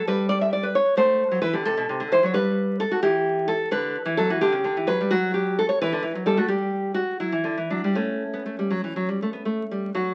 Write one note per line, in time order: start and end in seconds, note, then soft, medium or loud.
0.07 0.73 G3 medium
0.07 0.29 B4 medium
0.29 0.41 D5 loud
0.41 0.52 E5 medium
0.53 0.64 D5 medium
0.63 0.75 B4 medium
0.75 0.97 C#5 medium
0.97 1.22 A3 medium
0.97 1.41 C5 medium
1.31 1.41 F#3 medium
1.42 1.54 E3 medium
1.42 1.54 B4 loud
1.53 1.65 D3 medium
1.53 1.65 G4 medium
1.65 1.77 C3 medium
1.65 2.09 A4 medium
1.77 1.88 B2 medium
1.89 2.00 C3 medium
2.00 2.11 D3 medium
2.12 2.22 E3 medium
2.12 2.25 C5 medium
2.23 2.34 F#3 medium
2.23 2.33 C#5 medium
2.34 2.83 G3 medium
2.34 2.77 B4 loud
2.80 2.91 A4 medium
2.91 3.02 F#4 medium
3.02 3.52 E3 medium
3.02 3.47 G4 medium
3.48 3.70 A4 medium
3.71 3.96 D3 medium
3.71 4.15 B4 medium
4.05 4.16 E3 medium
4.17 4.28 F#3 medium
4.17 4.29 A4 loud
4.30 4.41 E3 medium
4.30 4.41 F#4 medium
4.41 4.52 D3 medium
4.41 4.86 G4 medium
4.52 4.63 C#3 medium
4.64 4.75 D3 medium
4.77 4.87 E3 medium
4.87 4.98 F#3 medium
4.87 5.10 B4 medium
5.01 5.11 G3 medium
5.11 5.61 F#3 medium
5.11 5.33 F#4 medium
5.34 5.56 G4 medium
5.59 5.68 A4 medium
5.69 5.80 C#5 medium
5.82 5.92 E3 medium
5.82 6.24 B4 medium
5.92 6.03 D3 medium
6.03 6.13 E3 medium
6.15 6.25 F#3 medium
6.26 6.37 G3 medium
6.26 6.37 A4 medium
6.37 6.48 A3 medium
6.37 6.48 F#4 medium
6.48 7.00 G3 medium
6.48 6.94 G4 medium
6.94 7.18 F#4 medium
7.20 7.31 F#3 medium
7.20 7.67 E4 medium
7.32 7.44 E3 medium
7.44 7.56 D3 medium
7.58 7.69 E3 medium
7.70 7.82 F#3 medium
7.70 7.94 D4 medium
7.84 7.95 G3 medium
7.95 8.23 A3 medium
7.95 10.14 C#4 medium
8.33 8.45 B3 soft
8.46 8.57 A3 medium
8.59 8.70 G3 soft
8.70 8.82 F#3 medium
8.84 8.95 E3 soft
8.96 9.08 F#3 medium
9.09 9.20 G3 soft
9.22 9.33 A3 medium
9.33 9.45 B3 soft
9.45 9.63 A3 soft
9.71 9.89 G3 soft
9.94 10.12 F#3 medium
9.94 10.14 F#4 medium